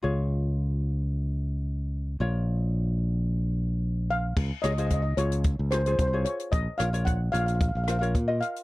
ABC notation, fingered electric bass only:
X:1
M:4/4
L:1/16
Q:1/4=111
K:Db
V:1 name="Fingered electric bass" clef=bass
D,,16 | B,,,16 | D,, z D,,4 D,,3 D,,3 C,,2 z2 | B,,, z B,,,4 B,,,3 B,,,3 B,,2 z2 |]